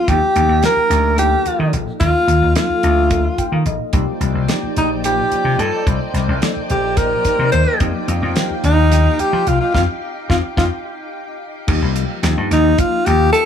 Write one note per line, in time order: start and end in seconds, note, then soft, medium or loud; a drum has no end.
0.00 0.10 F4 medium
0.08 0.19 D#2 medium
0.08 0.60 F3 medium
0.08 0.60 A#3 medium
0.08 0.61 D#4 medium
0.08 0.64 G4 medium
0.08 0.61 G4 medium
0.08 kick medium
0.08 closed hi-hat medium
0.36 0.46 D#2 medium
0.36 closed hi-hat medium
0.49 0.59 D#2 medium
0.63 1.16 F3 medium
0.63 1.15 A#3 medium
0.63 1.15 D#4 medium
0.63 1.16 G4 medium
0.63 1.15 A#4 loud
0.63 snare medium
0.63 closed hi-hat medium
0.76 muted slap bass stroke soft
0.90 1.32 D2 medium
0.90 snare soft
0.90 closed hi-hat medium
1.17 2.22 F3 medium
1.17 2.22 A#3 medium
1.17 2.22 D#4 medium
1.17 1.71 G4 medium
1.17 2.22 A4 medium
1.17 closed hi-hat medium
1.46 muted slap bass stroke soft
1.46 closed hi-hat soft
1.59 1.70 D#3 medium
1.73 1.84 A#1 medium
1.73 closed hi-hat medium
2.00 2.11 D#2 medium
2.00 2.52 F4 loud
2.00 kick loud
2.00 closed hi-hat medium
2.27 2.38 D#2 medium
2.27 closed hi-hat medium
2.42 2.53 D#2 medium
2.55 3.08 F3 medium
2.55 3.08 A#3 medium
2.55 3.08 D#4 medium
2.55 3.62 F4 medium
2.55 3.08 A4 medium
2.55 snare loud
2.55 closed hi-hat medium
2.70 muted slap bass stroke soft
2.83 3.26 D2 medium
2.83 closed hi-hat medium
3.11 3.92 F3 medium
3.11 3.92 A#3 medium
3.11 3.92 D#4 medium
3.11 3.94 A4 medium
3.11 kick loud
3.11 closed hi-hat medium
3.38 3.51 G5 medium
3.38 muted slap bass stroke soft
3.38 kick medium
3.38 closed hi-hat medium
3.52 3.63 D#3 medium
3.52 3.65 F5 medium
3.65 3.76 A#1 medium
3.65 3.92 D#5 medium
3.65 closed hi-hat medium
3.93 4.04 C2 medium
3.93 4.46 F3 medium
3.93 4.46 A#3 medium
3.93 4.46 D#4 medium
3.93 11.64 D#4 medium
3.93 4.46 G4 medium
3.93 7.77 C5 medium
3.93 7.76 D5 medium
3.93 11.64 G5 medium
3.93 kick medium
3.93 closed hi-hat medium
4.20 4.31 C2 medium
4.20 closed hi-hat medium
4.35 4.45 C2 medium
4.48 5.01 F3 medium
4.48 5.01 A#3 medium
4.48 5.01 D#4 medium
4.48 5.01 G4 medium
4.48 snare loud
4.48 closed hi-hat medium
4.63 muted slap bass stroke soft
4.76 5.19 A#1 medium
4.76 4.90 D#4 medium
4.76 closed hi-hat medium
5.04 6.09 F3 medium
5.04 6.09 A#3 medium
5.04 6.09 D#4 medium
5.04 6.09 F4 medium
5.04 5.61 G4 medium
5.04 closed hi-hat medium
5.31 muted slap bass stroke soft
5.31 closed hi-hat medium
5.45 5.55 C3 medium
5.59 5.69 G2 medium
5.59 5.87 A4 medium
5.59 closed hi-hat soft
5.87 5.97 C2 medium
5.87 kick medium
5.87 closed hi-hat medium
6.14 6.25 C2 medium
6.14 snare soft
6.14 closed hi-hat medium
6.28 6.39 C2 medium
6.41 6.94 F3 medium
6.41 6.94 A#3 medium
6.41 6.94 D#4 medium
6.41 6.95 A4 medium
6.41 snare loud
6.41 closed hi-hat medium
6.56 muted slap bass stroke soft
6.70 7.12 A#1 medium
6.70 6.99 G4 medium
6.70 closed hi-hat medium
6.96 7.79 F3 medium
6.96 7.79 A#3 medium
6.96 7.79 D#4 medium
6.96 7.79 G4 medium
6.96 7.51 A#4 medium
6.96 kick loud
6.96 snare soft
6.96 closed hi-hat medium
7.25 muted slap bass stroke soft
7.25 kick medium
7.25 snare soft
7.25 closed hi-hat medium
7.39 7.50 C3 medium
7.52 7.64 D#2 medium
7.52 7.78 C5 medium
7.52 closed hi-hat medium
7.80 7.91 F2 medium
7.80 8.33 F3 medium
7.80 8.33 A#3 medium
7.80 8.33 D#4 medium
7.80 8.33 G4 medium
7.80 11.64 G4 medium
7.80 11.64 F5 medium
7.80 kick loud
7.80 closed hi-hat medium
8.08 8.19 F2 medium
8.08 closed hi-hat medium
8.22 8.33 F2 medium
8.35 8.88 F3 medium
8.35 8.88 A#3 medium
8.35 8.88 D#4 medium
8.35 8.88 G4 medium
8.35 snare loud
8.35 closed hi-hat medium
8.50 muted slap bass stroke soft
8.63 9.06 D#2 medium
8.63 9.22 D#4 loud
8.63 closed hi-hat medium
8.90 9.73 F3 medium
8.90 9.73 A#3 medium
8.90 9.73 D#4 medium
8.90 9.74 G4 medium
8.90 snare soft
8.90 closed hi-hat medium
9.19 9.50 G4 medium
9.19 muted slap bass stroke soft
9.19 closed hi-hat medium
9.33 9.43 F3 medium
9.47 9.57 C2 medium
9.47 9.60 F4 medium
9.47 closed hi-hat soft
9.61 9.73 F4 medium
9.74 9.85 F2 medium
9.74 9.83 C4 medium
9.74 9.83 D#4 medium
9.74 9.83 F4 medium
9.74 9.81 F4 medium
9.74 kick medium
9.74 snare medium
10.29 10.40 F2 medium
10.29 10.38 C4 medium
10.29 10.38 D#4 medium
10.29 10.38 F4 medium
10.29 10.37 F4 medium
10.29 kick medium
10.29 snare medium
10.57 10.68 F2 medium
10.57 10.66 C4 medium
10.57 10.66 D#4 medium
10.57 10.64 F4 medium
10.57 10.66 F4 medium
10.57 kick medium
10.57 snare medium
11.67 11.79 D#2 medium
11.67 12.20 F3 medium
11.67 12.20 A#3 medium
11.67 12.20 D#4 medium
11.67 12.20 G4 medium
11.67 kick loud
11.67 crash medium
11.82 12.03 C2 medium
11.96 closed hi-hat medium
12.23 12.34 D#2 medium
12.23 12.75 F3 medium
12.23 12.75 A#3 medium
12.23 12.75 D#4 medium
12.23 12.75 G4 medium
12.23 snare loud
12.23 closed hi-hat medium
12.37 12.48 G2 medium
12.51 12.72 D#2 medium
12.51 12.81 D#4 medium
12.51 snare soft
12.51 closed hi-hat medium
12.78 13.45 F3 medium
12.78 13.45 A#3 medium
12.78 13.45 D#4 medium
12.78 13.45 F4 medium
12.78 13.07 F4 medium
12.78 kick loud
12.78 closed hi-hat medium
13.06 13.28 D#2 medium
13.06 13.32 G4 medium
13.06 closed hi-hat medium
13.32 13.45 A4 loud
13.32 closed hi-hat medium